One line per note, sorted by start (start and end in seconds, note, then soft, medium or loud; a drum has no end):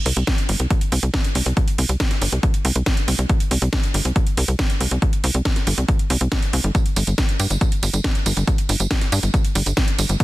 0.06 0.13 C2 medium
0.06 open hi-hat loud
0.17 0.24 C2 medium
0.17 closed hi-hat medium
0.27 kick loud
0.27 snare loud
0.27 closed hi-hat medium
0.38 closed hi-hat medium
0.49 0.56 G1 loud
0.49 open hi-hat loud
0.60 0.67 C2 medium
0.60 closed hi-hat medium
0.70 kick loud
0.70 closed hi-hat medium
0.81 closed hi-hat medium
0.92 0.99 C2 loud
0.92 open hi-hat loud
1.03 1.10 C2 medium
1.03 closed hi-hat medium
1.14 kick loud
1.14 snare loud
1.14 closed hi-hat medium
1.24 closed hi-hat medium
1.35 1.42 C2 medium
1.35 open hi-hat loud
1.46 1.53 C2 medium
1.46 closed hi-hat medium
1.57 kick loud
1.57 closed hi-hat medium
1.68 closed hi-hat medium
1.78 1.86 C2 medium
1.78 open hi-hat loud
1.89 1.96 C2 medium
1.89 closed hi-hat medium
2.00 kick loud
2.00 snare loud
2.00 closed hi-hat medium
2.11 snare soft
2.11 closed hi-hat medium
2.22 2.29 G1 loud
2.22 open hi-hat loud
2.32 2.40 C2 medium
2.32 closed hi-hat medium
2.43 kick loud
2.43 closed hi-hat medium
2.54 closed hi-hat medium
2.65 2.72 C2 loud
2.65 open hi-hat loud
2.76 2.83 C2 medium
2.76 closed hi-hat medium
2.86 kick loud
2.86 snare loud
2.86 closed hi-hat medium
2.97 closed hi-hat medium
3.08 3.15 C2 medium
3.08 open hi-hat loud
3.19 3.26 C2 medium
3.19 closed hi-hat medium
3.29 kick loud
3.29 closed hi-hat medium
3.40 closed hi-hat medium
3.51 3.58 C2 medium
3.51 open hi-hat loud
3.62 3.69 C2 medium
3.62 closed hi-hat medium
3.73 kick loud
3.73 snare loud
3.73 closed hi-hat medium
3.83 closed hi-hat medium
3.94 4.01 G1 medium
3.94 open hi-hat loud
4.05 4.12 C2 medium
4.05 closed hi-hat medium
4.16 kick loud
4.16 closed hi-hat medium
4.27 closed hi-hat medium
4.37 4.45 C2 loud
4.37 open hi-hat loud
4.48 4.55 C2 medium
4.48 closed hi-hat medium
4.59 kick loud
4.59 snare loud
4.59 closed hi-hat medium
4.70 closed hi-hat medium
4.81 4.88 C2 medium
4.81 open hi-hat loud
4.91 4.99 C2 medium
4.91 closed hi-hat medium
5.02 kick loud
5.02 closed hi-hat medium
5.13 closed hi-hat medium
5.24 5.31 C2 medium
5.24 open hi-hat loud
5.35 5.42 C2 medium
5.35 closed hi-hat medium
5.45 kick loud
5.45 snare loud
5.45 closed hi-hat medium
5.56 snare soft
5.56 closed hi-hat medium
5.67 5.74 G1 medium
5.67 open hi-hat loud
5.78 5.85 C2 medium
5.78 closed hi-hat medium
5.88 kick loud
5.88 closed hi-hat medium
5.99 closed hi-hat medium
6.10 6.17 C2 loud
6.10 open hi-hat loud
6.21 6.28 C2 medium
6.21 closed hi-hat medium
6.32 kick loud
6.32 snare loud
6.32 closed hi-hat medium
6.43 closed hi-hat medium
6.53 6.60 C2 medium
6.53 open hi-hat loud
6.64 6.71 G1 medium
6.64 closed hi-hat medium
6.75 kick loud
6.75 closed hi-hat medium
6.75 tambourine soft
6.86 closed hi-hat medium
6.96 7.04 G1 medium
6.96 open hi-hat loud
6.96 tambourine medium
7.07 7.14 G1 medium
7.07 closed hi-hat medium
7.07 tambourine soft
7.18 kick loud
7.18 snare loud
7.18 closed hi-hat medium
7.18 tambourine soft
7.29 closed hi-hat medium
7.40 7.47 G2 loud
7.40 open hi-hat loud
7.40 tambourine medium
7.50 7.58 G1 medium
7.50 closed hi-hat medium
7.50 tambourine soft
7.61 kick loud
7.61 closed hi-hat medium
7.61 tambourine soft
7.72 closed hi-hat medium
7.83 7.90 G1 loud
7.83 open hi-hat loud
7.83 tambourine medium
7.93 8.01 G1 medium
7.93 closed hi-hat medium
7.93 tambourine soft
8.04 kick loud
8.04 snare loud
8.04 closed hi-hat medium
8.15 closed hi-hat medium
8.26 8.33 G1 medium
8.26 open hi-hat loud
8.26 tambourine medium
8.37 8.44 G1 medium
8.37 closed hi-hat medium
8.37 tambourine soft
8.47 kick loud
8.47 closed hi-hat medium
8.47 tambourine soft
8.58 closed hi-hat medium
8.69 8.76 G1 medium
8.69 open hi-hat loud
8.69 tambourine medium
8.80 8.87 G1 medium
8.80 closed hi-hat medium
8.80 tambourine soft
8.91 kick loud
8.91 snare loud
8.91 closed hi-hat medium
9.01 snare soft
9.01 closed hi-hat medium
9.12 9.19 G2 medium
9.12 open hi-hat loud
9.12 tambourine medium
9.23 9.30 G1 medium
9.23 closed hi-hat medium
9.23 tambourine soft
9.34 kick loud
9.34 closed hi-hat medium
9.34 tambourine soft
9.45 closed hi-hat medium
9.55 9.63 G1 loud
9.55 open hi-hat loud
9.55 tambourine medium
9.66 9.73 G1 medium
9.66 closed hi-hat medium
9.66 tambourine soft
9.77 kick loud
9.77 snare loud
9.77 closed hi-hat medium
9.77 tambourine soft
9.88 closed hi-hat medium
9.99 10.06 G1 medium
9.99 open hi-hat loud
9.99 tambourine medium
10.09 10.17 G1 medium
10.09 closed hi-hat medium
10.09 tambourine soft
10.20 kick loud
10.20 closed hi-hat medium
10.20 tambourine soft